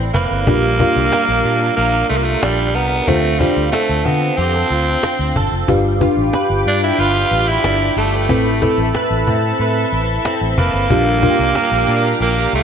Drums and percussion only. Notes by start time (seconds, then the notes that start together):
0.14 cajon bass
0.47 cajon bass
0.80 cajon bass
1.12 cajon slap
1.45 cajon slap
1.78 cajon slap
2.10 cajon slap
2.43 cajon slap
3.08 cajon bass
3.24 cajon slap
3.40 cajon bass
3.73 cajon slap
4.06 cajon bass
4.38 cajon slap
4.71 cajon slap
4.87 cajon slap
5.03 cajon slap
5.36 cajon bass
5.68 cajon bass
6.01 cajon bass
6.33 cajon slap
6.66 cajon slap
6.99 cajon slap
7.32 cajon slap
7.64 cajon slap
8.29 cajon bass
8.62 cajon bass
8.95 cajon slap
9.27 cajon bass
9.60 cajon slap
9.93 cajon slap
10.25 cajon slap
10.58 cajon bass
10.90 cajon bass
11.23 cajon bass
11.55 cajon slap
11.88 cajon slap
12.21 cajon slap
12.53 cajon slap